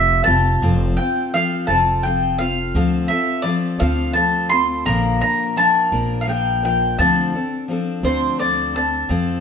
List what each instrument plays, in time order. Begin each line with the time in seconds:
Already playing: upright bass F1, steel-string acoustic guitar F3 A3 C4 F4 G4, mandolin E5
0.24 upright bass F1, steel-string acoustic guitar F4 G4, mandolin A5
0.28 steel-string acoustic guitar C4
0.62 upright bass F1, steel-string acoustic guitar F3 C4 F4 A4
0.97 steel-string acoustic guitar C4 F4 A4, mandolin G5
1.34 steel-string acoustic guitar F3 C4 F4 A4, mandolin F5
1.67 upright bass F1, steel-string acoustic guitar C4 F4 A4, mandolin A5
1.71 steel-string acoustic guitar F3
2.03 steel-string acoustic guitar F3 C4 F4, mandolin G5
2.07 steel-string acoustic guitar A4
2.39 steel-string acoustic guitar C4 F4 A4, mandolin F5
2.75 upright bass D2, steel-string acoustic guitar D3 F3 C4 F4 A4
3.08 steel-string acoustic guitar F4 A4, mandolin E5
3.13 steel-string acoustic guitar C4
3.42 steel-string acoustic guitar F3 C4 F4, mandolin D5
3.47 steel-string acoustic guitar A4
3.79 upright bass D2, steel-string acoustic guitar D3 F3 C4 F4 A4, mandolin F5
4.13 steel-string acoustic guitar F3 C4 F4 A4, mandolin A5
4.49 steel-string acoustic guitar C4 F4 A4, mandolin C6
4.85 upright bass A#1, steel-string acoustic guitar A#2 D3 F3 A#3 D4 A#4, mandolin A#5
5.20 steel-string acoustic guitar F3 A#3 D4 A#4, mandolin A#5
5.56 steel-string acoustic guitar F3 A#3 D4 A#4, mandolin A5
5.92 upright bass A#1, steel-string acoustic guitar A#2 D3 F3 A#3 D4 A#4
6.21 mandolin F5
6.26 steel-string acoustic guitar F3 A#3 D4 A#4, mandolin G5
6.62 steel-string acoustic guitar F3 A#3 D4 A#4, mandolin G5
6.98 upright bass D2, steel-string acoustic guitar D3 F3 C4 D4 A4, mandolin A5
7.34 steel-string acoustic guitar C4 D4 A4
7.68 steel-string acoustic guitar F3 C4 D4 A4
8.03 upright bass D2, steel-string acoustic guitar D3 F3 C4 D4 A4, mandolin C5
8.39 steel-string acoustic guitar F3 C4 D4 A4, mandolin D5
8.74 steel-string acoustic guitar C4 D4 A4, mandolin A5
9.09 upright bass F2, steel-string acoustic guitar F3 C4 F4 A4